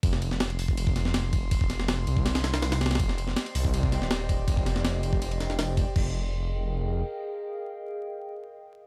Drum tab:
CC |--------------------------------|--------------------------------|--------------------------------|--------------------------------|
RD |x---x---x-x-----x---x---x---x---|x---x---x---x---x-x-x-x-x-x-xxxx|x---x---x-x-----x---x---x---x---|x---x---x---x---x-x-x---x---x---|
HH |------------o-------------------|--------------------------------|------------o-------------------|--------------------------------|
SD |--o---o-o-----------o-o-o-------|----o-o-o-------o-o-o-o-o-o-oooo|--o---o-o-----------o-o-o-------|----o-o-o-----------o-o-o-------|
BD |o-------------o---o---------o---|o-o-----------o-----------------|o-------------o---o---------o---|o-o-----------o-------------o---|

CC |x-------------------------------|--------------------------------|
RD |--------------------------------|--------------------------------|
HH |--------------------------------|--------------------------------|
SD |--------------------------------|--------------------------------|
BD |o-------------------------------|--------------------------------|